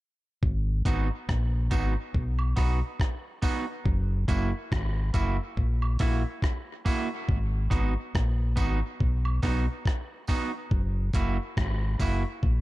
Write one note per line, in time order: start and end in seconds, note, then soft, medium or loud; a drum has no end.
0.43 0.83 G#1 loud
0.43 kick loud
0.85 1.09 G#1 medium
0.85 1.07 B3 medium
0.85 1.08 D#4 medium
0.85 1.08 F#4 medium
0.85 kick loud
0.85 closed hi-hat medium
0.85 tambourine medium
1.29 1.69 A#1 medium
1.29 kick loud
1.29 cross-stick loud
1.71 1.94 G#1 medium
1.71 1.93 B3 medium
1.71 1.93 D#4 medium
1.71 1.93 F#4 medium
1.71 kick medium
1.71 closed hi-hat medium
1.71 tambourine medium
2.14 2.54 B1 medium
2.14 kick loud
2.39 high woodblock medium
2.56 2.81 B1 medium
2.56 2.78 B3 medium
2.56 2.79 D#4 medium
2.56 2.79 F#4 medium
2.56 kick medium
2.56 cross-stick medium
2.56 open hi-hat medium
2.56 tambourine medium
3.00 kick loud
3.00 cross-stick loud
3.42 3.64 B3 medium
3.42 3.64 D#4 medium
3.42 3.65 F#4 medium
3.42 kick medium
3.42 open hi-hat medium
3.42 tambourine medium
3.85 4.25 F#1 loud
3.85 kick loud
4.28 4.51 F#1 loud
4.28 4.50 A#3 medium
4.28 4.50 E4 medium
4.28 4.50 F#4 medium
4.28 kick loud
4.28 closed hi-hat medium
4.28 tambourine soft
4.72 5.12 G#1 loud
4.72 kick loud
4.72 cross-stick loud
5.14 5.38 F#1 medium
5.14 5.36 A#3 medium
5.14 5.36 E4 medium
5.14 5.36 F#4 medium
5.14 kick medium
5.14 closed hi-hat medium
5.14 tambourine medium
5.57 5.97 A#1 medium
5.57 kick medium
5.82 high woodblock medium
5.99 6.23 A#1 medium
5.99 6.22 A#3 medium
5.99 6.22 E4 medium
5.99 6.22 F#4 medium
5.99 kick medium
5.99 cross-stick medium
5.99 open hi-hat medium
5.99 tambourine medium
6.42 kick loud
6.42 cross-stick loud
6.85 7.07 A#3 medium
6.85 7.07 E4 loud
6.85 7.08 F#4 loud
6.85 kick medium
6.85 open hi-hat medium
6.85 tambourine medium
7.29 7.69 G#1 loud
7.29 kick loud
7.70 7.95 G#1 medium
7.70 7.93 B3 medium
7.70 7.93 D#4 medium
7.70 7.93 F#4 loud
7.70 kick loud
7.70 closed hi-hat medium
7.70 tambourine soft
8.15 8.54 A#1 medium
8.15 kick loud
8.15 cross-stick loud
8.56 8.80 G#1 medium
8.56 8.78 B3 medium
8.56 8.79 D#4 medium
8.56 8.79 F#4 loud
8.56 kick medium
8.56 closed hi-hat medium
8.56 tambourine medium
9.00 9.40 B1 medium
9.00 kick loud
9.25 high woodblock medium
9.42 9.66 B1 medium
9.42 9.65 B3 medium
9.42 9.65 D#4 medium
9.42 9.65 F#4 medium
9.42 kick medium
9.42 cross-stick medium
9.42 open hi-hat medium
9.42 tambourine soft
9.86 kick loud
9.86 cross-stick medium
10.27 10.50 B3 medium
10.27 10.50 D#4 loud
10.27 10.51 F#4 medium
10.27 kick medium
10.27 open hi-hat medium
10.27 tambourine medium
10.71 11.11 F#1 loud
10.71 kick loud
11.13 11.37 F#1 medium
11.13 11.36 A#3 medium
11.13 11.37 E4 medium
11.13 11.37 F#4 loud
11.13 kick loud
11.13 closed hi-hat medium
11.13 tambourine soft
11.57 11.97 G#1 loud
11.57 kick loud
11.57 cross-stick loud
12.00 12.23 F#1 medium
12.00 12.22 A#3 medium
12.00 12.22 E4 medium
12.00 12.22 F#4 medium
12.00 kick medium
12.00 open hi-hat medium
12.00 tambourine medium
12.43 12.61 A#1 medium
12.43 kick loud